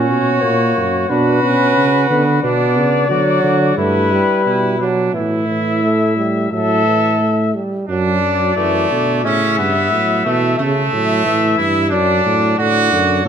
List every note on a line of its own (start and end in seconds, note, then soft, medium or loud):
0.00 0.11 A#2 medium
0.00 0.44 C#4 loud
0.00 1.05 F#4 medium
0.00 1.11 C#5 medium
0.09 0.42 B2 medium
0.43 0.76 A#2 medium
0.43 1.09 A#3 medium
0.77 1.09 F#2 medium
1.09 1.42 B2 medium
1.09 1.42 D4 medium
1.09 2.40 F#4 medium
1.09 2.41 B4 medium
1.43 1.76 B2 medium
1.43 2.09 C#4 medium
1.77 2.09 C#3 medium
2.10 2.43 D3 medium
2.10 2.42 B3 loud
2.42 2.79 B2 medium
2.42 3.09 B3 loud
2.42 3.08 D4 medium
2.42 3.74 D5 medium
2.77 3.09 C#3 medium
3.09 3.43 D3 medium
3.09 3.79 F#3 loud
3.09 3.76 F#4 medium
3.44 3.77 D3 medium
3.77 4.21 G2 medium
3.77 4.13 A3 medium
3.77 4.44 E4 medium
3.77 4.84 B4 medium
4.12 4.79 G3 medium
4.45 5.10 B2 medium
4.45 4.79 E4 medium
4.80 5.16 F#3 medium
4.80 5.14 D4 medium
5.13 6.49 A2 medium
5.13 5.48 E3 medium
5.13 6.21 E4 medium
5.13 6.47 E5 medium
5.48 5.82 E3 medium
5.83 6.16 A3 medium
6.16 6.51 G3 medium
6.51 7.52 A2 medium
6.51 6.85 F#3 medium
6.51 7.50 A4 medium
6.51 7.52 E5 medium
6.86 7.19 E3 medium
7.20 7.56 A3 medium
7.55 7.88 G3 medium
7.88 8.53 F#2 medium
7.88 8.20 F#3 medium
7.88 8.52 D4 medium
7.88 9.26 D5 medium
8.22 8.56 F#3 medium
8.56 8.90 F#2 medium
8.56 8.91 E3 medium
8.56 9.23 A3 medium
8.90 9.26 B2 medium
8.90 9.23 D3 medium
9.24 9.60 A2 medium
9.24 9.75 C#3 medium
9.24 9.58 C#4 loud
9.24 10.57 E5 medium
9.58 9.93 G2 medium
9.58 10.24 B3 medium
9.91 10.25 A2 medium
9.91 10.27 F#3 medium
10.25 10.59 B2 medium
10.25 10.59 E3 medium
10.25 10.58 A3 medium
10.58 10.92 C#3 medium
10.58 11.57 A3 loud
10.58 11.89 E5 medium
10.93 11.25 A2 medium
10.93 11.27 F#3 medium
11.26 11.58 A2 medium
11.26 11.92 E3 medium
11.57 11.94 G2 medium
11.57 11.90 E4 loud
11.90 12.25 F#2 medium
11.90 12.57 F#3 medium
11.90 12.56 D4 loud
11.90 12.57 D5 medium
12.26 12.58 A2 medium
12.58 12.91 A2 medium
12.58 12.91 D3 medium
12.58 13.23 F#4 loud
12.58 13.27 D5 medium
12.92 13.25 F#2 medium
12.92 13.24 D3 medium
13.25 13.28 A2 loud